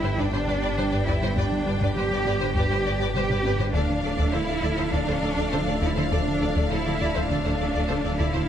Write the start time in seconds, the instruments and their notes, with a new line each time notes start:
Already playing: detuned saw bass G1, ambient pad G3 D4 B4 D5, french horn section B3 G4, cello section E4, violin section G5
0.03 double bass section G2, analog synth bass G2, viola section B4, violin section C5
0.18 double bass section G2, analog synth bass G2, cello section D4, viola section B4, violin section D5, taiko
0.32 analog synth bass G2, double bass section G2, viola section B4, violin section C5
0.47 double bass section G2, analog synth bass G2, viola section B4, violin section D5
0.62 analog synth bass G2, double bass section G2, viola section B4, violin section D5
0.77 double bass section G2, analog synth bass G3, viola section B4, violin section C5
0.92 analog synth bass G2, double bass section G2, viola section B4, violin section D5
1.07 analog synth bass G2, double bass section G2, cello section E4, viola section B4, violin section D5, taiko
1.22 double bass section G2, analog synth bass G3, viola section B4, violin section C5
1.36 analog synth bass G2, double bass section G2, cello section D4, viola section B4, violin section D5, taiko
1.51 analog synth bass G3
1.66 double bass section G2, analog synth bass G3, viola section B4, violin section D5
1.81 analog synth bass G2, double bass section G2, viola section B4, violin section D5, taiko
1.95 double bass section G2, analog synth bass G3, cello section G4, viola section B4, violin section C5
2.11 double bass section G2, analog synth bass G3, viola section B4, violin section D5
2.25 analog synth bass G2, double bass section G2, viola section B4, violin section D5
2.40 double bass section G2, analog synth bass G2, viola section B4, violin section C5
2.55 analog synth bass G2, double bass section G2, cello section G4, viola section B4, violin section D5, taiko
2.70 analog synth bass G2, double bass section G2, viola section B4, violin section C5
2.85 analog synth bass G2, double bass section G2, viola section B4, violin section D5
3.00 analog synth bass G2, double bass section G2, viola section B4, violin section D5
3.14 double bass section G2, analog synth bass G3, cello section G4, viola section B4, violin section C5, taiko low-mid
3.29 analog synth bass G2, double bass section G2, viola section B4, violin section D5, taiko low-mid
3.45 analog synth bass G2, double bass section G2, viola section B4, violin section D5, taiko high
3.59 double bass section G2, analog synth bass G3, viola section B4, violin section C5, taiko low
3.73 detuned saw bass D1, double bass section D2, analog synth bass D2, french horn section F3 A3, ambient pad F3 D4 A4 D5, cello section D4, viola section A4, violin section D5 F5, taiko
3.89 analog synth bass D3
4.03 double bass section D2, analog synth bass D3, viola section A4, violin section D5
4.17 analog synth bass D2, double bass section D2, viola section A4, violin section D5, taiko
4.32 double bass section D2, analog synth bass D3, cello section E4, viola section A4, violin section C5
4.47 double bass section D2, analog synth bass D3, viola section A4, violin section D5
4.62 analog synth bass D2, double bass section D2, viola section A4, violin section D5
4.77 analog synth bass D2, double bass section D2, viola section A4, violin section C5
4.92 analog synth bass D2, double bass section D2, cello section D4, viola section A4, violin section D5, taiko
5.07 analog synth bass D2, double bass section D2, viola section A4, violin section C5
5.22 analog synth bass D2, double bass section D2, viola section A4, violin section D5
5.37 analog synth bass D2, double bass section D2, viola section A4, violin section D5
5.52 double bass section D2, analog synth bass D3, viola section A4, violin section C5
5.67 analog synth bass D2, double bass section D2, viola section A4, violin section D5
5.81 analog synth bass D2, double bass section D2, cello section E4, viola section A4, violin section D5, taiko
5.96 double bass section D2, analog synth bass D3, viola section A4, violin section C5
6.11 analog synth bass D2, double bass section D2, cello section D4, viola section A4, violin section D5, taiko
6.27 analog synth bass D3
6.41 double bass section D2, analog synth bass D3, viola section A4, violin section D5
6.56 double bass section D2, analog synth bass D2, viola section A4, violin section D5, taiko
6.70 double bass section D2, analog synth bass D3, cello section E4, viola section A4, violin section C5
6.85 double bass section D2, analog synth bass D3, viola section A4, violin section D5
7.00 double bass section D2, analog synth bass D2, viola section A4, violin section D5
7.15 double bass section D2, analog synth bass D2, viola section A4, violin section C5
7.29 analog synth bass D2, double bass section D2, cello section D4, viola section A4, violin section D5, taiko
7.44 analog synth bass D2, double bass section D2, viola section A4, violin section C5
7.59 analog synth bass D2, double bass section D2, viola section A4, violin section D5
7.74 analog synth bass D2, double bass section D2, viola section A4, violin section D5
7.89 double bass section D2, analog synth bass D3, viola section A4, violin section C5
8.04 analog synth bass D2, double bass section D2, viola section A4, violin section D5
8.19 analog synth bass D2, double bass section D2, cello section E4, viola section A4, violin section D5, taiko
8.34 double bass section D2, analog synth bass D3, viola section A4, violin section C5